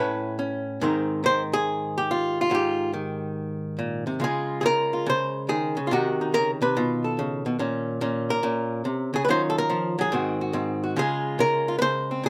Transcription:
hollow-body jazz guitar
Already playing: A2 C#4 E4
0.00 B4
0.39 C#4
0.81 G#2 D#3 C4 D#4 A#4
1.24 D#3 C5
1.53 G#4
1.98 G4
2.11 F4
2.41 F4
2.50 G#2 F#4
2.55 G4
2.93 D#3
3.79 A#2
4.07 C3
4.20 C#3 G#3 F4
4.24 G#4
4.61 C#3 G#4
4.66 A#4
4.93 F4
5.06 C#3 C5
5.49 D#3 G#4
5.77 C#3
5.87 F4
5.91 C3 D#3 D#4 F#4
6.21 D#4
6.34 C#3 A#4
6.62 C3 B4
6.77 B2 F4
7.04 A4
7.19 C#3
7.46 B2
7.59 A#2 C#4
8.01 A#2 C#4
8.30 A#4
8.43 A#2 C#4
8.85 C3
9.14 C#3 G#4
9.25 D#3 B4
9.29 F#3 C#4 F4 C5
9.50 A4
9.58 A#4
9.70 F3
9.99 F#3 G#4
10.12 G#2 D#3 C4 F#4
10.41 F#4
10.53 G#2 C4
10.84 F#4
10.96 C#3 G#3 F4 G#4
11.39 C#3 A#4
11.68 F4
11.79 C#3 B4 C5
12.11 C4
12.24 A#2 G#4

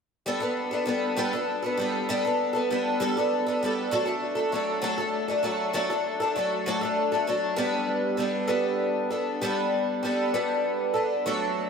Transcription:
twelve-string acoustic guitar
0.26 G3 B3 D4 A4
0.40 B3 D4 A4
0.71 B3 D4 A4
0.85 G3 B3 D4 A4
1.16 G3 B3 D4 A4
1.33 B3 D4 A4
1.63 B3 D4 A4
1.77 G3 B3 D4 A4
2.09 G3 B3 D4 A4
2.25 B3 D4 A4
2.53 B3 D4 A4
2.70 G3 B3 D4 A4
3.00 G3 B3 D4 A4
3.17 B3 D4 A4
3.47 B3 D4 A4
3.63 G3 B3 D4 A4
3.91 F#3 A3 D4 A4
4.06 A3 D4 A4
4.35 A3 D4 A4
4.52 F#3 A3 D4 A4
4.82 F#3 A3 D4 A4
4.98 A3 D4 A4
5.28 A3 D4 A4
5.43 F#3 A3 D4 A4
5.73 F#3 A3 D4 A4
5.90 A3 D4 A4
6.20 A3 D4 A4
6.36 F#3 A3 D4 A4
6.66 F#3 A3 D4 A4
6.81 A3 D4 A4
7.12 A3 D4 A4
7.27 F#3 A3 D4 A4
7.56 G3 B3 D4 A4
8.17 G3 B3 D4 A4
8.48 G3 B3 D4 A4
9.10 B3 D4 A4
9.41 G3 B3 D4 A4
10.03 G3 B3 D4 A4
10.34 G3 B3 D4 A4
10.94 B3 D4 A4
11.26 F#3 A3 D4 A4

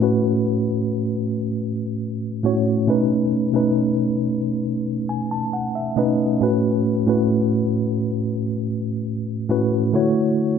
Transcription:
tine electric piano
Already playing: C#4 F#4 B4
0.00 A2 A3 C#4 F#4 B4
2.43 A2 A3 C#4 F#4 C#5
2.87 B2 A3 C#4 D#4 B4
3.53 B2 A3 C#4 D#4 B4
5.09 G#5
5.31 A5
5.53 F#5
5.75 E5
5.96 B2 A3 C#4 D#4 B4 D#5
6.40 A2 A3 C#4 F#4 B4
7.06 A2 A3 C#4 F#4 B4
9.49 A2 A3 C#4 F#4 B4
9.93 D3 A3 E4 F#4 C#5

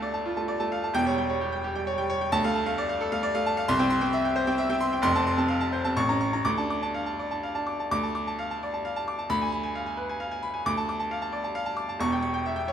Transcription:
grand piano
Already playing: D2 A3 F5 A5
0.02 D5
0.14 A5
0.26 F4
0.37 A3 A5
0.48 D5
0.60 A3 A5
0.72 F5
0.84 A5
0.94 E1 E2 G5
1.06 G3 C#5
1.18 G5
1.29 G3 C#5
1.41 G4
1.52 G5
1.64 G4
1.75 G3 G5
1.87 C#5
1.98 G3 G5
2.10 C#5
2.21 G5
2.32 D2 A5
2.44 A3 F5
2.55 A5
2.66 A3 F5
2.78 D5
2.89 F5
3.01 A4
3.12 A3 F5
3.23 D5
3.35 A3 F5
3.46 A5
3.57 F5
3.68 C2 C6
3.79 C4 G5
3.90 C6
4.01 C4 G5
4.13 E5
4.25 G5
4.36 C5
4.47 C4 G5
4.58 E5
4.70 C4 G5
4.81 C6
4.93 G5
5.02 F1 F2 C6
5.15 C4 A5
5.27 C6
5.38 C4 A5
5.48 F5
5.61 A5
5.73 C5
5.85 C4 A5
5.96 A1 C#6
6.09 C#4 A#5
6.21 C#6
6.33 C#4 A#5
6.45 D2 D6
6.57 D4 A5
6.70 D6
6.82 D4 A5
6.94 F5
7.06 A5
7.19 D5
7.31 D4 A5
7.43 F5
7.55 D4 A5
7.67 D6
7.80 A5
7.91 D2 D6
8.03 A5
8.15 D6
8.27 A5
8.39 F5
8.51 A5
8.63 D5
8.74 A5
8.85 F5
8.96 A5
9.08 D6
9.19 A5
9.29 D2 B5
9.41 G#5
9.52 B5
9.63 G#5
9.75 F5
9.86 G#5
9.97 B4
10.09 G#5
10.20 F5
10.31 G#5
10.43 B5
10.54 G#5
10.66 D2 D6
10.77 A5
10.89 D6
11.00 A5
11.11 F5
11.22 A5
11.32 D5
11.44 A5
11.55 F5
11.66 A5
11.77 D6
11.89 A5
11.99 E1 E2 C#6
12.12 G5
12.23 C#6
12.34 G5
12.46 E5
12.56 G5
12.68 C#5

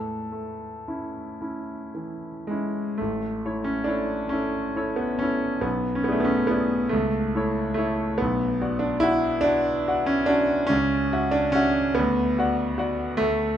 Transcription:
grand piano
Already playing: A2 A4
0.32 A3
0.88 C#4 E4
1.41 C#4 E4
1.95 E3
2.47 G#3 C#4 E4
2.98 A1 A3
3.45 E4 A4 C#5
3.64 C#4
3.84 D4 E4
3.88 A4 C#5
4.29 C#4 E4 A4 C#5
4.76 E4 A4 C#5
4.96 B3
5.19 C#4 E4 A4
5.23 C#5
5.61 B1 B3
5.95 C#4
6.04 B3 E4 G#4
6.09 A3 D5
6.20 B3
6.25 C#4
6.47 B3 E4 G#4 D5
6.89 C#2 A3
7.35 E4 A4 C#5
7.74 A3 E4 A4
7.78 C#5
8.18 B1 B3
8.61 F#4 D5 F#5
8.79 D4
9.00 E4 F#4 F#5
9.04 D5
9.41 D4 F#4 D5 F#5
9.88 F#4 D5 F#5
10.06 C#4
10.26 D4 F#4 D5
10.30 F#5
10.67 C#2 C#4
11.13 F#4 E5 F#5
11.31 D4
11.52 C#4 F#4 E5 F#5
11.95 D2 B3
12.38 F#4 D5 F#5
12.78 F#4 D5 F#5
13.17 D2 A3

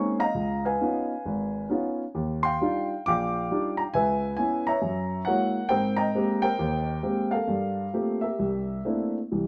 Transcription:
grand piano
Already playing: G#3 A#3 C4 C#4 D#4 F5 G#5 C#6
0.19 D#5 F5 A#5
0.35 C#2
0.65 B4 F5 G#5
0.81 B3 C#4 D#4 F4
1.25 G#1
1.70 B3 C#4 D#4 F4
2.15 D#2
2.43 F5 G5 C6
2.61 G3 D4 D#4 F4
3.06 A#1 F5 G5 D6
3.51 G3 D4 D#4 F4
3.77 A#5
3.94 C#2 B4 E5 G#5
4.37 B3 C#4 E4 G#5
4.67 C#5 E5 A#5
4.82 F#2
5.25 G#3 A#3 E4 F#4 A#4 C#5 F#5
5.69 G#2 C4 A#4 C5 G5
5.96 D#5 G5 A#5
6.15 G#3 A#3 C4 G4
6.42 A#4 C5 G5
6.59 D#2
7.03 G#3 A#3 C4 G4
7.31 A4 A#4 F5
7.48 G2 G3
7.93 A3 A#3 C4 F4 G4
8.21 G4 A#4 E5
8.39 C2
8.85 A3 A#3 C4 D4 E4
9.32 C2 E3

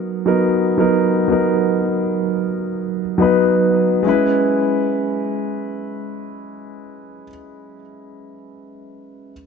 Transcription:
grand piano
Already playing: F#3 B3 D#4 A#4
0.26 F#3 B3 D#4 A#4
0.78 F#3 B3 D#4 A#4
1.28 F#3 B3 D#4
1.32 A#4
3.18 F#3 B3 D#4
3.22 B4
4.02 G#3 C#4
4.07 E4 B4

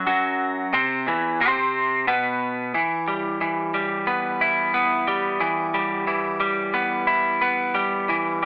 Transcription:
clean electric guitar
0.06 F#2 F#3
0.73 C3 C4
1.07 E2 E3
1.41 C3 C4
2.07 B2 B3
2.74 E3
3.08 G3
3.41 E3
3.74 G3
4.07 B3
4.41 E4
4.74 B3
5.08 G3
5.41 E3
5.74 G3
6.07 E3
6.40 G3
6.74 B3
7.07 E4
7.42 B3
7.75 G3
8.09 E3

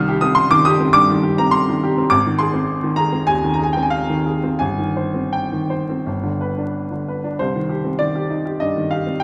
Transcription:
upright piano
Already playing: C2 D#3 F6
0.08 G4
0.21 C4 D#6
0.35 C6
0.51 D#3 D6
0.65 G4 D#6
0.80 C4
0.93 G2 D6
1.10 D#3
1.23 G4
1.38 C4 A#5
1.51 C6
1.69 D#3
1.83 G4
1.98 C4
2.10 G#1 D6
2.26 D#3
2.39 G#4 C6
2.54 C4
2.83 D#3
2.96 G#4 A#5
3.13 C4
3.27 D#2 G#5
3.44 D#3
3.54 A#5
3.59 G#4
3.63 G#5
3.73 C4 G5
3.83 G#5
3.90 F5
4.10 D#3
4.26 G#4
4.44 C4
4.59 G1 G#5
4.78 D#3
4.97 C5
5.14 C4
5.33 G5
5.52 D#3
5.70 C5
5.89 C4
6.06 G1
6.24 D3
6.41 B4
6.58 D4
6.91 D3
7.08 B4
7.24 D4
7.39 C2 C5
7.56 D#3
7.69 G4
7.85 C4
7.99 D#3 D5
8.16 G4
8.30 D#4
8.46 G4
8.60 G2 D#5
8.76 D#3
8.91 G4 F5
9.07 C4
9.20 G5

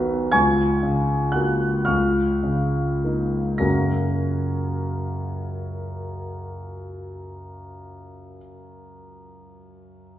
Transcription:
grand piano
Already playing: B1 D#3 B3 F#4 B5 F#6 B6
0.32 C#2 G#5 C#6 G#6
0.83 C#3
1.32 A#3 F#4 F#5 F#6
1.85 C#2 F5 C#6 F6
2.43 C#3
3.04 A#3 D#4
3.58 F#2 C#3 A#3 C#4 F#4 A#4 A#6

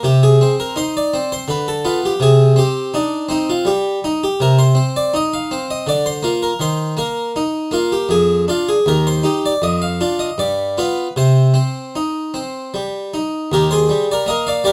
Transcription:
harpsichord
0.03 C3 G4
0.23 G#4
0.41 C4
0.60 A#4
0.76 D#4 C5
0.97 D5
1.14 C4
1.32 C5
1.48 D3 B4
1.68 A4
1.85 B3 F4
2.05 G4
2.20 C3 G#4
2.56 C4 G4
2.94 D4 D#4
3.29 C4 D#4
3.50 F4
3.65 G3 G4
4.04 D#4
4.24 G4
4.40 C3 A#4
4.59 C5
4.75 C4
4.96 D5
5.14 D#4 D#5
5.34 F5
5.51 C4
5.71 D#5
5.87 D3 D5
6.06 C5
6.23 A#3 F4
6.43 A#4
6.60 D#3 C5
6.97 A#3 A#4
7.36 D#4
7.71 A#3 F4
7.92 G4
8.09 F2 G#4
8.48 D4 F4
8.69 G#4
8.86 D#2 A#4
9.07 C5
9.23 D#4 G4
9.46 D5
9.62 F2 D#5
9.82 F5
10.01 D4 F4
10.19 D#5
10.38 G2 D5
10.78 B3 F4 B4
11.16 C3 C5
11.54 C4
11.96 D#4
12.34 C4
12.74 G3
13.14 D#4
13.52 D#2 G4 A#4
13.71 G#4 C5
13.89 G3
14.12 A#4 D5
14.26 A#3 A#4 D#5
14.47 D5 F5
14.64 G3 A#4 D5

